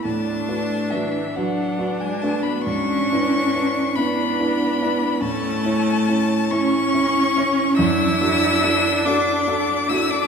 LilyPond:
<<
  \new Staff \with { instrumentName = "Violin" } { \time 6/8 \key a \major \tempo 4. = 47 a''4 e''8 fis''8. gis''16 a''16 b''16 | cis'''4. b''4. | a''4. cis'''4. | e'''4. d'''4 e'''16 d'''16 | }
  \new Staff \with { instrumentName = "Grand piano" } { \time 6/8 \key a \major a,8 <d' fis' b'>8 <d' fis' b'>8 <d' fis' b'>8 <d' fis' b'>8 <d' fis' b'>8 | gis,8 <d' e' b'>8 <d' e' b'>8 <d' e' b'>8 <d' e' b'>8 <d' e' b'>8 | a,8 <cis' e' cis''>8 <cis' e' cis''>8 <cis' e' cis''>8 <cis' e' cis''>8 <cis' e' cis''>8 | fis,8 <d' fis' a'>8 <d' fis' a'>8 <d' fis' a'>8 <d' fis' a'>8 <d' fis' a'>8 | }
  \new Staff \with { instrumentName = "Viola" } { \time 6/8 \key a \major d'4. d'4. | d'4. d'4. | cis'4. cis'4. | d'2. | }
  \new Staff \with { instrumentName = "Cello" } { \time 6/8 \key a \major a4 e8 fis8. gis16 a16 b16 | cis'4. b4. | a4. cis'4. | e'4. d'4 e'16 d'16 | }
>>